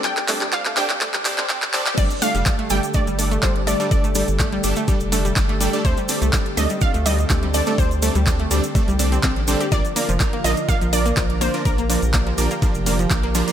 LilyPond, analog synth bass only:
\new Staff \with { instrumentName = "Analog synth bass" } { \clef bass \time 4/4 \key g \minor \tempo 4 = 124 d,8. d,8. d,16 r8 c,8. a,,8. r16 | g,,16 r8 f,,16 r8 g,,16 r8 g,,8. g,,8. r16 | g,,8. g,,8. g,,16 r8 f,,8. g,,8. r16 | d,16 r8 c,16 r8 d,16 r8 d,8. d,8. r16 |
d,8. d,8. d,16 r8 c,8. a,,8. r16 | bes,,16 r8 f,,16 r8 bes,,16 r8 bes,,8. bes,,8. r16 | bes,,8. bes,,8. bes,,16 r8 f,,8. bes,,8. r16 | }